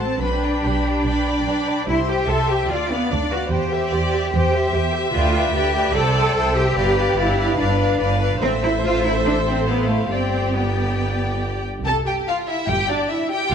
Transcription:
Already playing: double bass section A1, violin section C5
0.01 cello section C4, viola section A4 A5, violin section A5
0.22 double bass section B1, cello section D4, violin section B4 B5, viola section B4 G5
0.43 viola section D5 B5, violin section G5
0.63 double bass section B1, violin section G4 B5, viola section B4 G5
0.85 viola section D5 B5, violin section G5
1.04 double bass section B1, viola section B4 G5, violin section D5 B5
1.26 viola section D5 B5, violin section G5
1.47 double bass section B1, viola section B4 G5, violin section B5
1.68 viola section D5 B5, violin section G5
1.87 double bass section C2, cello section E4, viola section G4 E5, violin section C5 C6
2.08 cello section G4, viola section C5 G5, violin section G5
2.28 double bass section C2, viola section G4 E5, cello section A4, violin section E5 C6
2.49 cello section G4, viola section C5 G5, violin section G5
2.69 double bass section D2, cello section F4, violin section D5, viola section D5
2.89 cello section B3, viola section B4, violin section F5
3.10 double bass section D2, cello section D4, viola section D5, violin section D5
3.21 cello section D4
3.30 cello section F#4, viola section B4, violin section F5
3.50 double bass section E2, cello section G4, viola section G4 C5, violin section C5 G5
3.72 viola section G4 C5, violin section E5
3.91 double bass section E2, viola section G4 C5, violin section D5 G5
4.12 viola section G4 C5, violin section E5
4.32 double bass section E2, viola section G4 C5, violin section C5 G5
4.54 viola section G4 C5, violin section E5
4.73 double bass section E2, viola section G4 C5, violin section E5 G5
4.94 viola section G4 C5, violin section E5
5.13 double bass section D2, cello section F4, viola section B4 D5, violin section G5
5.34 viola section B4 D5, violin section G5
5.54 double bass section D2, cello section G4, viola section B4 D5, violin section G5
5.74 viola section B4 D5, violin section G5
5.94 double bass section C2, cello section A4, viola section C5 E5, violin section D5 G5
6.15 viola section C5 E5, violin section G5
6.36 double bass section C2, violin section C5 G5, viola section C5 E5
6.56 cello section G4, viola section C5 E5, violin section G5
6.77 double bass section G1, viola section B4 D5, violin section B4 F5
6.97 viola section B4 D5, violin section F5
7.17 double bass section G1, cello section E4, violin section G4 F5, viola section B4 D5
7.38 viola section B4 D5, violin section F5
7.58 double bass section G1, cello section D4, viola section B4 D5, violin section B4 F5
7.79 viola section B4 D5, violin section F5
8.00 double bass section G1, violin section B4 F5, viola section B4 D5
8.21 viola section B4 D5, violin section F5
8.42 double bass section A1, cello section C4, viola section A4 C5, violin section C5 E5
8.63 cello section E4
8.84 cello section F4
9.05 cello section E4
9.25 cello section D4
9.47 cello section C4
9.68 cello section B3, violin section E4 F5
9.89 cello section A3
10.11 double bass section G1, cello section C4, violin section G4 G5, viola section D5
10.54 cello section B3, viola section D5, violin section G5
11.85 double bass section C2, cello section C3, viola section A4, violin section A4 A5
12.07 viola section G4, violin section G4 G5
12.27 violin section F4 F5, viola section F4
12.47 violin section E4 E5, viola section E4
12.68 double bass section G1, cello section G2, viola section G4, violin section G4 G5
12.89 viola section D4, violin section D4 D5
13.10 viola section E4, violin section E4 E5
13.30 viola section G4, violin section G4 G5
13.50 double bass section C2, cello section C3, viola section F4, violin section F4

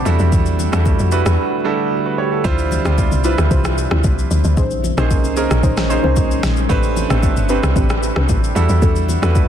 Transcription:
Already playing: grand piano A5 D6
0.05 log drum bass E2, ambient pad D3 G3 A3 F#4, grand piano G3 D4 E4 F#4 A4, shaker
0.19 log drum bass E2, shaker
0.32 log drum bass E2, kick, low conga, shaker
0.46 shaker
0.59 high bongo, low conga, shaker
0.72 log drum bass E2, grand piano G3 D4 E4 F#4 A4, cross-stick, low bongo, shaker
0.85 kick, high bongo, shaker
0.99 log drum bass F2, shaker
1.11 grand piano G3 D4 E4 F#4 B4, shaker
1.26 log drum bass E2, cross-stick, high bongo, shaker
1.64 grand piano G3 D4 E4 F#4 A4
2.06 grand piano F#4 B4
2.18 grand piano G4 C#5
2.32 grand piano E4 A4
2.44 log drum bass D2, ambient pad C3 F3 E5, grand piano G3 D4 E4 F4 C5, synth stab E4 F4 G4 C5, kick, low conga, shaker
2.58 shaker
2.71 high bongo, low conga, shaker
2.85 log drum bass D2, grand piano G3 D4 E4 F4 D5, synth stab E4 F4 G4 C5, cross-stick, low bongo, shaker
2.98 kick, high bongo, shaker
3.12 log drum bass C2, low bongo, shaker
3.24 grand piano G3 D4 E4 F4 B4, synth stab E4 F4 G4 C5, shaker
3.38 log drum bass D2, cross-stick, high bongo, shaker
3.51 log drum bass C2, synth stab E4 F4 G4 C5, kick, low conga, shaker
3.64 cross-stick, shaker
3.78 shaker
3.91 log drum bass D2, synth stab E4 F4 G4 C5, cross-stick, low bongo
4.04 log drum bass C2, kick, high bongo, shaker
4.19 shaker
4.31 log drum bass D2, shaker
4.44 log drum bass D2, shaker
4.57 log drum bass A#1, ambient pad G#3 C#4 D#4 C5, synth stab C#4 D#4 G#4 C5, kick, low conga, shaker
4.71 shaker
4.84 high bongo, low conga, shaker
4.97 log drum bass A#1, grand piano A#3 C#4 D#4 G#4 C5, synth stab C#4 D#4 G#4 C5, cross-stick, low bongo, shaker
5.10 kick, high bongo, shaker
5.24 log drum bass C2, low bongo, shaker
5.36 grand piano A#3 C#4 D#4 G#4 A#4, synth stab C#4 D#4 G#4 C5, shaker
5.51 log drum bass A#1, cross-stick, high bongo, shaker
5.63 log drum bass A#1, synth stab C#4 D#4 G#4 C5, kick, low conga, shaker
5.77 cross-stick, snare, shaker
5.89 grand piano A#3 C#4 D#4 G#4 C5, shaker
6.03 log drum bass C2, synth stab C#4 D#4 G#4 C5, low bongo
6.16 kick, high bongo, shaker
6.31 shaker
6.43 log drum bass A#1, cross-stick, snare, shaker
6.56 shaker
6.69 log drum bass A1, ambient pad C3 G3 D4 B4, grand piano A3 C4 D4 G4 B4, synth stab C4 D4 G4 B4, kick, low conga, shaker
6.83 shaker
6.96 high bongo, low conga, shaker
7.10 log drum bass A1, grand piano A3 C4 D4 G4 A4, synth stab C4 D4 G4 B4, cross-stick, low bongo, shaker
7.23 kick, high bongo, shaker
7.37 log drum bass G1, low bongo, shaker
7.49 grand piano A3 C4 D4 G4 B4, synth stab C4 D4 G4 B4, shaker
7.63 log drum bass C2, cross-stick, high bongo, shaker
7.76 log drum bass A1, synth stab C4 D4 G4 B4, kick, low conga, shaker
7.89 cross-stick, shaker
8.03 shaker
8.16 log drum bass C2, synth stab C4 D4 G4 B4, cross-stick, low bongo
8.29 log drum bass A1, kick, high bongo, shaker
8.44 shaker
8.55 log drum bass E2, ambient pad D3 A3 F#5, grand piano G3 D4 E4 F#4 A4, shaker
8.69 log drum bass E2, shaker
8.82 log drum bass E2, synth stab D4 F#4 G4 A4, kick, low conga, shaker
8.96 shaker
9.09 high bongo, low conga, shaker
9.22 log drum bass E2, grand piano G3 D4 E4 F#4 B4, synth stab D4 F#4 G4 A4, cross-stick, low bongo, shaker
9.35 kick, high bongo, shaker

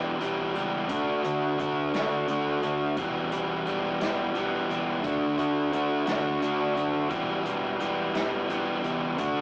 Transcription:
Already playing: fingered electric bass E1, overdriven electric guitar E3 G3 B3 G4
0.19 fingered electric bass B1, overdriven electric guitar E3 G3 B3 G4, closed hi-hat
0.54 fingered electric bass C#2, overdriven electric guitar E3 G3 B3 G4, closed hi-hat
0.89 fingered electric bass D2, overdriven electric guitar D3 A3 D4 F#4, kick, closed hi-hat
1.23 fingered electric bass D3, overdriven electric guitar A3 D4 F#4, closed hi-hat
1.58 fingered electric bass D2, overdriven electric guitar D3 A3 D4 F#4, kick, closed hi-hat
1.94 fingered electric bass D2, overdriven electric guitar A3 D4 F#4, snare, closed hi-hat
2.28 fingered electric bass D2, overdriven electric guitar D3 A3 D4 F#4, closed hi-hat
2.62 fingered electric bass D2, overdriven electric guitar A3 D4 F#4, closed hi-hat
2.97 fingered electric bass E1, overdriven electric guitar E2 B2 E3 G3 B3 G4, kick, closed hi-hat
3.31 fingered electric bass E1, overdriven electric guitar E3 G3 B3 G4, closed hi-hat
3.65 fingered electric bass E1, overdriven electric guitar E3 G3 B3 G4, closed hi-hat
4.00 fingered electric bass E1, overdriven electric guitar E3 G3 B3 G4, snare, closed hi-hat
4.35 fingered electric bass B1, overdriven electric guitar E3 G3 B3 G4, closed hi-hat
4.69 fingered electric bass E1, overdriven electric guitar E3 G3 B3 G4, closed hi-hat
5.03 fingered electric bass D2, overdriven electric guitar D3 A3 D4 F#4, kick, closed hi-hat
5.38 fingered electric bass D3, overdriven electric guitar A3 D4 F#4, closed hi-hat
5.72 fingered electric bass D2, overdriven electric guitar D3 A3 D4 F#4, closed hi-hat
6.06 fingered electric bass D2, overdriven electric guitar A3 D4 F#4, snare, closed hi-hat
6.40 fingered electric bass D2, overdriven electric guitar D3 A3 D4 F#4, closed hi-hat
6.74 fingered electric bass F#2, overdriven electric guitar D3 A3 D4 F#4, closed hi-hat
7.09 fingered electric bass E1, overdriven electric guitar E2 B2 E3 G3 B3 G4, kick, closed hi-hat
7.43 fingered electric bass E1, overdriven electric guitar E3 G3 B3 G4, closed hi-hat
7.78 fingered electric bass E1, overdriven electric guitar E3 G3 B3 G4, closed hi-hat
8.14 fingered electric bass E1, overdriven electric guitar E3 G3 B3 G4, snare, closed hi-hat
8.48 fingered electric bass B1, overdriven electric guitar E3 G3 B3 G4, closed hi-hat
8.83 fingered electric bass C2, overdriven electric guitar E3 G3 B3 G4, closed hi-hat
9.17 fingered electric bass D2, overdriven electric guitar D3 A3 D4 F#4, kick, closed hi-hat

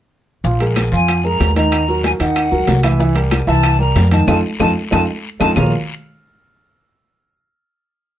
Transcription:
0.44 upright bass A#1, upright piano F3 F4 F5, high bongo, high conga, long guiro, maracas
0.60 upright piano G#3 G#4 A#4, high conga, high timbale, maracas
0.76 high bongo, high conga, high timbale, low timbale, short guiro, claves, maracas
0.91 upright bass F2, upright piano F3 F4 F5, flute G#5, high bongo, short guiro, maracas
1.08 high bongo, high conga, high timbale, long guiro, claves, maracas
1.24 upright piano G#3 G#4 A#4, flute A#5, high bongo, high conga, maracas
1.40 upright bass D#2, high bongo, low bongo, high conga, high timbale, low timbale, short guiro, maracas
1.56 upright piano D#3 D#4 D#5, flute A#5, high bongo, high conga, high timbale, short guiro, maracas
1.72 high bongo, high timbale, long guiro, claves, maracas
1.88 upright piano F#3 F#4 A#4, high conga, maracas
2.04 flute G#5, high bongo, high conga, high timbale, low timbale, short guiro, maracas
2.20 upright bass D#2, upright piano D#3 D#4 D#5, flute F#5, high bongo, high conga, high timbale, short guiro, maracas
2.36 high bongo, high conga, high timbale, long guiro, claves, maracas
2.51 upright bass C#2, upright piano F#3 F#4 A#4, high bongo, high conga, maracas
2.67 upright bass C2, high bongo, low bongo, high conga, high timbale, low timbale, short guiro, maracas
2.83 upright piano E3 E4 E5, high bongo, high conga, high timbale, short guiro, claves, maracas
2.99 upright piano E3 E4 E5, high bongo, high conga, long guiro, maracas
3.15 upright piano G3 G4 A#4, high conga, high timbale, maracas
3.31 high bongo, high conga, high timbale, low timbale, short guiro, claves, maracas
3.47 upright bass C2, upright piano E3 E4 E5, flute A5, high bongo, short guiro, maracas
3.63 high bongo, high conga, high timbale, long guiro, claves, maracas
3.79 upright piano G3 G4 A#4, flute A#5, high bongo, high conga, maracas
3.95 upright bass F2, high bongo, low bongo, high conga, high timbale, low timbale, short guiro, maracas
4.11 upright piano D#3 D#4 D#5, flute A5, high bongo, high conga, high timbale, short guiro, maracas
4.27 upright bass F2, upright piano D#4 F4 A4, flute A5, low bongo, high conga, high timbale, long guiro, claves, maracas
4.60 upright bass F2, upright piano D#4 F4 A4, flute A5, low bongo, high conga, high timbale, long guiro, claves, maracas
4.91 upright bass F2, upright piano D#4 F4 A4, flute A5, low bongo, high conga, high timbale, long guiro, claves, maracas
5.40 upright bass F2, upright piano D#4 F4 A4, flute A5, low bongo, high conga, high timbale, long guiro, claves, maracas
5.55 upright bass A#1, upright piano A#3 F4 G#4 A#4 C#5 F5, flute A#5, low bongo, low conga, low timbale, long guiro, claves, maracas

